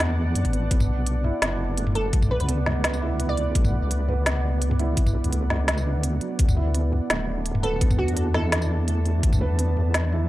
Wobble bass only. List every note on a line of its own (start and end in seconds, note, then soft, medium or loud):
0.00 0.35 E2 medium
0.36 0.44 F#2 medium
0.45 0.70 A1 loud
0.71 1.32 B1 loud
1.42 2.12 F#1 medium
2.13 2.39 B1 loud
2.40 3.54 C#2 medium
3.55 3.81 B1 loud
3.82 4.96 C#2 medium
4.97 5.23 B1 loud
5.24 5.97 C#2 medium
5.95 6.20 D2 medium
6.39 7.01 D2 loud
7.10 7.80 D1 medium
7.81 8.07 D2 loud
8.08 9.22 E2 medium
9.23 9.49 D2 loud
9.50 10.29 E2 medium